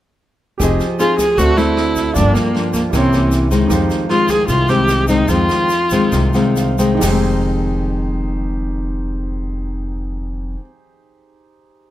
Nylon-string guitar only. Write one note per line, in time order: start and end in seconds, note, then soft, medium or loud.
0.61 1.36 F3 medium
0.61 0.85 C4 soft
0.61 0.86 D#4 soft
0.61 0.86 G#4 medium
1.00 1.25 C4 soft
1.00 1.25 D#4 soft
1.00 1.26 G#4 medium
1.38 2.14 D3 soft
1.38 1.54 A3 medium
1.38 1.54 C4 soft
1.38 1.55 F#4 medium
1.57 2.12 A3 medium
1.57 2.13 C4 medium
1.57 2.13 F#4 medium
2.16 2.91 G2 medium
2.16 2.51 F3 medium
2.16 2.52 A#3 medium
2.16 2.52 D4 medium
2.54 2.92 F3 medium
2.54 2.92 A#3 soft
2.54 2.92 D4 medium
2.93 3.69 C3 medium
2.93 3.10 E3 soft
2.93 3.10 A#3 soft
2.93 3.10 C#4 medium
3.13 3.48 E3 medium
3.13 3.49 A#3 medium
3.13 3.49 C#4 medium
3.51 4.06 D#3 medium
3.51 4.06 G#3 medium
3.51 4.07 C4 medium
3.70 4.47 F2 soft
4.09 4.65 D#3 soft
4.09 4.66 G#3 medium
4.09 4.66 C4 medium
4.49 5.27 C3 medium
4.69 5.06 D#3 medium
4.69 5.06 G#3 medium
4.69 5.06 C4 medium
5.09 5.26 D#3 medium
5.09 5.26 G#3 medium
5.09 5.26 C4 medium
5.29 6.10 F2 medium
5.29 5.70 D#3 medium
5.29 5.70 G#3 soft
5.29 5.70 C4 medium
5.92 6.31 D#3 medium
5.92 6.31 G#3 medium
5.92 6.31 C4 medium
6.13 6.99 C3 soft
6.34 6.75 D#3 medium
6.34 6.75 G#3 medium
6.34 6.75 C4 medium
6.78 7.02 D#3 medium
6.78 7.07 G#3 medium
6.78 7.11 C4 medium
6.97 10.54 F2 medium
7.03 10.60 D#3 medium
7.08 10.65 G#3 medium
7.12 10.69 C4 medium